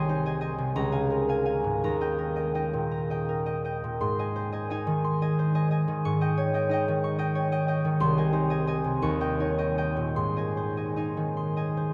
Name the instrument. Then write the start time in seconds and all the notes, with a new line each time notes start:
harp
Already playing: C2 D#5 G#5 C6
0.09 D#4 C5
0.26 D#5 G#5
0.41 D#5 G#5
0.58 C3
0.76 C#2 A#5
0.92 F5 G#5
1.10 A#4
1.29 F5 G#5
1.45 F5 G#5
1.64 G#2
1.84 D#2 A#5
2.01 D#5 G5
2.18 A#4
2.36 D#5 G5
2.55 D#4 D#5 G5
2.73 A#2
2.91 A#5
3.10 D#5 G5
3.29 A#4
3.46 D#5 G5
3.65 D#5 G5
3.84 A#2
4.01 G#2 C6
4.19 D#5 G#5
4.36 C5
4.52 D#5 G#5
4.70 D#4 D#5 G#5
4.87 D#3
5.04 C6
5.22 D#5 G#5
5.39 C5
5.55 D#5 G#5
5.71 D#5 G#5
5.88 D#3
6.05 G#2 C#6
6.21 D#5 G5
6.37 C#5
6.54 D#5 G5
6.69 D#4 D#5
6.73 G5
6.88 D#3
7.04 C#6
7.19 D#5 G5
7.35 C#5
7.52 D#5 G5
7.68 D#5 G5
7.85 D#3
8.00 C2 C6
8.18 D#5 G#5
8.33 D#4 C5
8.50 D#5 G#5
8.67 D#5 G#5
8.84 C3
9.02 D#2 C#6
9.20 D#5 G5
9.40 D#4 C#5
9.58 D#5 G5
9.78 D#5 G5
9.97 A#2
10.16 G#2 C6
10.37 D#5 G#5
10.57 C5
10.77 D#5 G#5
10.96 D#4 D#5 G#5
11.17 D#3
11.37 C6
11.57 D#5 G#5
11.77 C5